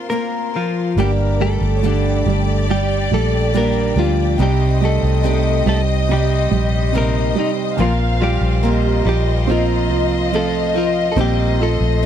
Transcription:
Already playing: A#3 F4 A#4 C5 F5 C6
0.10 A#3 C4 F4 A#4
0.54 F3 C4 F4 A#4
0.96 G1 G2 D3 G3 A#3 D4 G4 A#4 D5 G5 D6
1.00 G4
1.40 G3 A3 D4 G4 A4
1.61 G1
1.75 C#5
1.82 G2 D3 G3 D4 G4 D5
2.25 G1 G3 D4 G4
2.68 G3 D4 G4
3.11 A#1 G3 A3 A4
3.54 G2 D3 G3 A#3 D4 G4 A#4
3.96 D2 F3 G3 A#3 D4 F4 G4
4.38 C2 C3 G3 C4 D#4 G4 C5 D#5 D#6
4.42 G4
4.81 G3 A3 C4 D#4 G4
4.85 A4
5.03 C2
5.23 C3 G3 C4 D#4 G4
5.66 C2 G3 A3 C4 D#4 G4 A4
6.09 C3 G3 C4 D#4 G4
6.13 G4
6.51 A#1 G3
6.93 C3 G3 A#3 C4 D#4 G4
6.98 A#4
7.35 G3 C4 D#4 G4 D#5
7.40 D#4
7.77 A#1 A#2 F3 A#3 C4 F4 A#4 F5 C6
7.82 F4
8.20 G3 C4 F4 G4 A#4
8.41 A#1
8.62 A#3 C4 F4 A#4 D#5
9.05 A#1 G3 C4 F4 A#4
9.09 G4
9.47 F3 A#3 C4 F4 A#4
9.51 F4
9.89 C2 F4
10.32 F3 A3 C4 F4 A4
10.74 F3 C4 F4 A#4
11.12 A4
11.16 A#1 G3 A#3 C4 F4 A#4 D#5
11.21 G4
11.60 A3 C4 F4 A4
11.81 A#1
12.03 C4

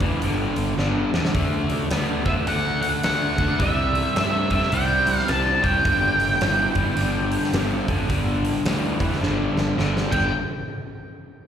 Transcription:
0.00 G2 E3, kick, open hi-hat
0.22 G1 G2 D3, open hi-hat
0.56 G1, open hi-hat
0.78 G1 G2 D3, snare
1.13 E2 G2 D3, snare
1.25 snare
1.35 D2 D3 A3, kick, open hi-hat
1.69 D2, open hi-hat
1.91 D2 D3 B3, snare, open hi-hat
2.26 D2 D3 B3 E5, kick, open hi-hat
2.47 D2 D3 A3 F#5, open hi-hat
2.82 F#5, open hi-hat
3.03 D2 D3 A3 F#5, snare, open hi-hat
3.38 D2 D3 A3, kick, open hi-hat
3.60 C2 C3 G3 E5, kick, open hi-hat
3.95 open hi-hat
4.16 G2 C3 A3 E5, snare, open hi-hat
4.50 C3 A3 E5, kick, open hi-hat
4.62 snare
4.72 C2 C3 G3 G5, open hi-hat
5.07 C2, open hi-hat
5.18 F5, snare
5.28 C2 C3 G3 A5, snare, open hi-hat
5.63 C2 C3 G3 G5, kick, open hi-hat
5.85 G1 G2 D3, kick, open hi-hat
6.20 G1, open hi-hat
6.41 G1 G2 E3, snare, open hi-hat
6.75 G1 G2 E3, kick, open hi-hat
6.97 G1 G2 D3, open hi-hat
7.32 open hi-hat
7.44 snare
7.53 G1 G2 D3, snare, open hi-hat
7.88 G1 G2 D3, kick, open hi-hat
8.09 G1 G2 D3, kick, open hi-hat
8.45 open hi-hat
8.65 D2 G2 E3, snare, open hi-hat
9.00 G2 E3, kick, open hi-hat
9.12 snare
9.21 G1 G2 D3, snare
9.56 G1, snare
9.77 G1 G2 D3, snare
9.97 snare
10.12 G1 G2 D3 G3 G5, kick, crash

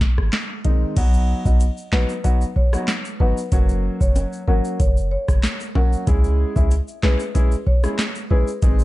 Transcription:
0.01 kick, snare, closed hi-hat
0.18 G#1, cross-stick
0.33 snare, clap, closed hi-hat
0.64 D#3 G#3 C4 D#4, kick, closed hi-hat
0.97 B1 F#3 B3 D#4 F#4, kick, closed hi-hat, crash, shaker
1.13 shaker
1.45 B1 F#3 B3 D#4 F#4 D#5, kick, shaker
1.60 closed hi-hat, shaker
1.77 shaker
1.92 A#1 F#3 B3 D#4 F#4 B4, snare, clap
2.09 shaker
2.24 F#3 B3 D#4 F#4, kick, closed hi-hat, shaker
2.41 shaker
2.56 C#5, kick
2.73 F#3 B3 D#4 F#4, cross-stick, shaker
2.88 snare, clap, closed hi-hat, shaker
3.05 shaker
3.20 G#1 F#3 B3 D#4 F#4 B4
3.37 shaker
3.52 F#1 F#3 A#3 C#4 F#4, kick, closed hi-hat, shaker
3.69 shaker
4.01 F#1 C#5, kick, shaker
4.16 closed hi-hat, high timbale, shaker
4.33 shaker
4.48 G#1 F#3 A#3 C#4 F#4 A#4
4.65 shaker
4.80 F#1 C#5, kick, closed hi-hat, shaker
4.97 shaker
5.11 C#5
5.28 F#1, kick, cross-stick, shaker
5.43 snare, clap, closed hi-hat, shaker
5.60 shaker
5.75 F#3 A#3 C#4 F#4, kick, high timbale
5.93 shaker
6.07 C#2 G#3 C#4 E4 G#4, kick, closed hi-hat, shaker
6.24 shaker
6.56 C#2 G#3 C#4 E4 G#4 E5, kick, shaker
6.71 closed hi-hat, shaker
6.88 shaker
7.03 B1 G#3 C#4 E4 G#4 B4, snare, clap
7.20 shaker
7.34 G#3 C#4 E4 G#4, kick, closed hi-hat, shaker
7.52 shaker
7.67 C#5, kick
7.83 G#3 C#4 E4 G#4, cross-stick, shaker
7.98 snare, clap, closed hi-hat, shaker
8.15 shaker
8.31 A#1 G#3 C#4 E4 G#4 B4
8.48 shaker
8.62 G#1 G#3 C4 D#4 G#4, kick, closed hi-hat, shaker
8.79 shaker

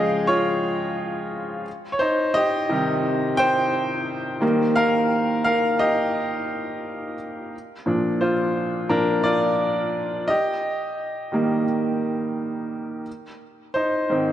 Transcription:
Already playing: C#3 F3 G#3 G#4 C#5 D#5 F5 G5
0.27 F4 C#5
1.92 C#5
1.99 D#4 C5
2.34 G4 D#5
2.69 C3 D#3 G3
3.37 C5 G5
4.41 D#3 G3 A#3
4.76 A#4 F5
5.44 A#4 F5
5.79 G4 D#5
7.86 A#2 F3 D4
8.21 F4 C5
8.89 A#2 F3 D4 A#4
9.24 F4 D5
10.28 G4 D#5
11.32 D#3 G3 A#3
13.74 D#4 C5
14.10 G#2 D#3 C4

